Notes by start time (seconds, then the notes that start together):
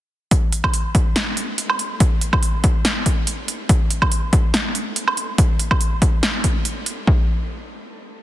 0.31 kick, closed hi-hat
0.53 closed hi-hat
0.64 kick, high woodblock
0.74 closed hi-hat
0.95 kick, closed hi-hat
1.16 snare, closed hi-hat
1.37 closed hi-hat
1.58 closed hi-hat
1.70 high woodblock
1.79 closed hi-hat
2.00 kick, closed hi-hat
2.21 closed hi-hat
2.33 kick, high woodblock
2.43 closed hi-hat
2.64 kick, closed hi-hat
2.85 snare, closed hi-hat
3.06 kick, closed hi-hat
3.27 closed hi-hat
3.48 closed hi-hat
3.69 kick, closed hi-hat
3.91 closed hi-hat
4.02 kick, high woodblock
4.12 closed hi-hat
4.33 kick, closed hi-hat
4.54 snare, closed hi-hat
4.75 closed hi-hat
4.96 closed hi-hat
5.08 high woodblock
5.17 closed hi-hat
5.38 kick, closed hi-hat
5.59 closed hi-hat
5.71 kick, high woodblock
5.81 closed hi-hat
6.02 kick, closed hi-hat
6.23 snare, closed hi-hat
6.44 kick, closed hi-hat
6.65 closed hi-hat
6.86 closed hi-hat
7.07 kick